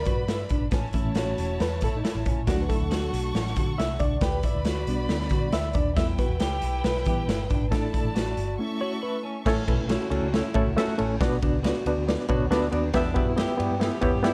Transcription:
Already playing: B4 D5 B5
0.05 G2 F#4 B4, kick, closed hi-hat
0.28 E4, snare, closed hi-hat
0.49 G1 D4, kick, closed hi-hat
0.71 A1 C#4 E4 C#5 A5, kick, snare, closed hi-hat
0.93 E3 A3 C#4 E4, kick, closed hi-hat
1.05 A1
1.15 F#4, snare, closed hi-hat
1.19 C#5
1.38 E1, closed hi-hat
1.60 E2 B4, snare, closed hi-hat
1.81 A2 E4 A4, kick, closed hi-hat
1.97 D#4
2.04 E4, muted picked electric bass stroke, snare, closed hi-hat
2.15 A1
2.25 A2 C#4, kick, closed hi-hat
2.47 D2 F#3 A3 D4 F#4 A4 F#5 C#6, kick, snare, closed hi-hat
2.62 B4
2.69 E4 A4, kick, closed hi-hat
2.81 D2
2.91 F#4, snare, closed hi-hat
3.13 B1, closed hi-hat
3.34 A1, snare, closed hi-hat
3.47 snare
3.56 D3 F#4, kick, closed hi-hat
3.78 C2 E4 E5, snare, closed hi-hat
3.99 C#2 D4 D5, kick, closed hi-hat
4.21 D2 G4 B4 D5 B5, kick, snare, closed hi-hat
4.43 E4 D5, kick, closed hi-hat
4.55 D2
4.65 F#4, snare, closed hi-hat
4.87 B1 G3 B3 D4, closed hi-hat
5.09 D2, snare, closed hi-hat
5.21 snare
5.29 D3 F#4, kick, closed hi-hat
5.52 D2 E4 E5, snare, closed hi-hat
5.73 D#2 D4 D5, kick, closed hi-hat
5.96 E2 G3 B3 E4 B4 E5 G5, kick, snare, closed hi-hat
6.18 F#4 B4, kick, closed hi-hat
6.29 E2
6.40 C#2 G4, snare, closed hi-hat
6.62 B1, closed hi-hat
6.84 B1 B4, snare, closed hi-hat
6.97 snare
7.05 E3 G3 B3 E4 G4, kick, closed hi-hat
7.28 G1 E4, snare, closed hi-hat
7.50 G#1 D4, kick, closed hi-hat
7.71 A1 A3 D4 E4 A4 D5 A5, kick, snare, closed hi-hat
7.93 E4, kick, closed hi-hat
8.05 A1
8.15 F#4, snare, closed hi-hat
8.37 G1, closed hi-hat
8.59 A3 C#4 E4 A4 E5 C#6
8.80 F#4 C#5
9.02 E4 B4
9.23 C#4
9.45 A1 A2 E3 A3 C#4 E4 A4 C#5, kick, snare, crash
9.67 B1 A3 C#4 E4 A4 B4, kick, ride
9.80 C#3 A3 E4
9.89 C#3 A3 C#4 E4 F#4 A4 C#5, snare, ride
10.10 C#2 F#3 A3 C#4 D4 E4 F#4 A4 C#5, ride
10.22 C#2
10.33 C#3 A3 C#4 E4 A4 C#5, snare, ride
10.54 A1 A3 C#4 E4 F#4 A4 C#5, kick, ride
10.66 C#2
10.76 C#3 A3 C#4 E4 F#4 A4 E5, snare, ride
10.88 muted picked electric bass stroke
10.98 A1 A3 C#4 E4 A4 C#5, ride
11.20 B1 B3 D4 F#4 B4 D5, kick, snare, ride
11.42 C#2 B3 D4 F#4 B4 D5, kick, ride
11.63 B3 D4 F#4 B4 D5, snare, ride
11.86 D2 B3 D4 F#4 B4 D5, ride
11.97 D2
12.08 B3 D4 F#4 B4 D5, snare, ride
12.20 snare
12.28 B1 B3 D4 F#4 B4 C#5, kick, ride
12.40 D2
12.50 B3 D4 E4 F#4 B4 D5, snare, ride
12.71 D#2 B3 D4 F#4 B4 D5, ride
12.93 E2 B2 G3 B3 D4 E4 G4 B4 E5, kick, snare, ride
13.14 F#2 B3 E4 F#4 G4 B4 E5, kick, ride
13.28 B2 G3 E4
13.37 B2 G3 B3 E4 G4 B4 E5, snare, ride
13.57 G2 F#3 B3 D4 E4 F#4 G4 B4 D5, ride
13.71 G2
13.80 E3 B3 E4 G4 B4 E5, snare, ride
14.01 E2 B3 E4 G4 B4 C#5, kick, ride
14.15 G2
14.23 B2 G3 B3 E4 G4 B4 D5, snare, ride

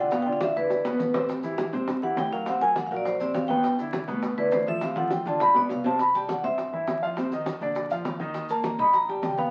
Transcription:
Already playing: B1 F#5
0.11 B2 B3 B4 F5, high bongo, high conga, maracas
0.22 D3 D4 G5, high bongo, high conga
0.27 F4
0.33 F5
0.41 E5, high bongo, high conga, maracas
0.56 E2 D3 D4 E4 B4, maracas
0.70 high bongo, high conga, maracas
0.85 B2 B3 B4, low bongo, high conga, maracas
1.00 A1, low bongo, high conga, maracas
1.14 C3 C4 C5, low bongo, high conga, maracas
1.29 high bongo, high conga, maracas
1.43 E3 E4 G4, high bongo, high conga, maracas
1.58 high bongo, high conga, maracas
1.73 E2 C3 C4 C5, low conga, maracas
1.88 high bongo, high conga, low conga, maracas
2.02 E3 E4 G4 F#5, high bongo, high conga
2.16 D2 G5, high bongo, low bongo, high conga, maracas
2.32 F#3 F#4 A#4 F5, high bongo, maracas
2.46 C3 C4 C5 F#5, high bongo, high conga, maracas
2.61 F#3 F#4 A#4 G#5, high bongo, high conga
2.76 F#5, high bongo, high conga, maracas
2.87 F5
2.91 A#1 F#3 F#4 A#4, maracas
2.96 D5
3.05 C5, high bongo, high conga, maracas
3.20 C3 C4 C5 D5, high bongo, high conga, maracas
3.34 G1 F5, high bongo, low bongo, high conga, maracas
3.48 B2 B3 B4 G5, high bongo, high conga, maracas
3.64 high bongo, high conga, maracas
3.78 D3 D4 E4, high bongo, high conga, maracas
3.93 high bongo, high conga, maracas
4.08 D2 B2 B3 B4, low conga, maracas
4.22 high bongo, high conga, maracas
4.37 D3 D4 E4 B4, high bongo, high conga
4.51 D2 C5, high bongo, low bongo, high conga, maracas
4.66 F3 F4 A4 E5, high bongo, high conga, maracas
4.81 C3 C4 C5 F5, high bongo, high conga, maracas
4.96 F3 F4 A4 F#5, high bongo, high conga
5.11 G5, high bongo, high conga, maracas
5.25 G1 D3 D4 F4 A5, high conga, maracas
5.40 B5, high bongo, low conga, maracas
5.54 B2 B3 B4 D5, high bongo, low conga
5.69 C2 F5, low bongo, low conga, maracas
5.84 C3 C4 C5 A5, low bongo, low conga, maracas
5.99 B5, high bongo, high conga, maracas
6.14 G3 G4 G5 A5, high bongo, high conga, maracas
6.29 F#5, high bongo, high conga, maracas
6.43 G2 C4 C5 E5 C6, low conga, maracas
6.58 high bongo, high conga, maracas
6.72 E3 E4 E5, high bongo, high conga
6.87 F2, high bongo, low bongo, high conga, maracas
7.02 F3 F4 F5, high bongo, maracas
7.17 C3 C4 C5, high bongo, high conga, maracas
7.31 D#3 D#4 D#5, high bongo, high conga, maracas
7.46 high bongo, high conga, maracas
7.61 A#1 D3 D4 D5, maracas
7.75 high bongo, high conga, maracas
7.90 F3 F4 F5, high bongo, high conga, maracas
8.05 D#2, high bongo, low bongo, high conga, maracas
8.20 D#3 D#4 D#5, high bongo, high conga, maracas
8.34 high bongo, high conga, maracas
8.49 A#3 A#4 A5 A#5, high bongo, high conga, maracas
8.64 A#5, high bongo, high conga, maracas
8.79 A#1 D#4 D#5 B5 D#6, low conga, maracas
8.93 A#5, high bongo, high conga, maracas
9.08 G3 G4 G5 A5, high bongo, high conga
9.22 C#2 G5, high bongo, low bongo, high conga, maracas
9.37 B3 B4 F5 B5, high bongo, high conga, maracas

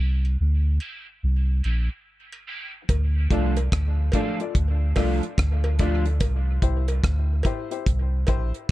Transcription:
Already playing: G3
0.00 C2 C4 E4 G4
0.25 cowbell
0.40 D2
0.80 G3 C4 E4 G4, cowbell
1.23 C2
1.64 A#1 G3 C4 E4 G4, cowbell
2.33 cowbell
2.47 G3 C4 E4 G4
2.74 muted clean electric guitar stroke
2.89 D2, kick, closed hi-hat, cowbell
3.30 C2 F3 A3 D4 F4 A4 D5, kick, closed hi-hat
3.57 closed hi-hat, cowbell
3.72 D2, kick, cross-stick, closed hi-hat
4.12 F3 A3 D4 F4 A4 D5, kick, closed hi-hat, cowbell
4.40 F4 A4 D5, closed hi-hat
4.55 D2, kick, closed hi-hat
4.96 C2 F3 A3 D4 F4 A4 D5, kick, cross-stick, open hi-hat, cowbell
5.23 closed hi-hat
5.38 D2, kick, cross-stick, closed hi-hat
5.64 cowbell
5.79 F3 A3 D4 F4 A4 D5, kick, closed hi-hat
6.05 A4 D5, muted clean electric guitar stroke, closed hi-hat
6.20 C2, kick, closed hi-hat, cowbell
6.62 C2 E4 G4 C5, kick, closed hi-hat
6.88 closed hi-hat, cowbell
7.04 D2, kick, cross-stick, closed hi-hat
7.43 E4 G4 C5, kick, closed hi-hat, cowbell
7.71 E4 G4 C5, closed hi-hat
7.86 C2, kick, closed hi-hat
8.27 A#1 E4 G4 C5, kick, closed hi-hat, cowbell
8.54 closed hi-hat

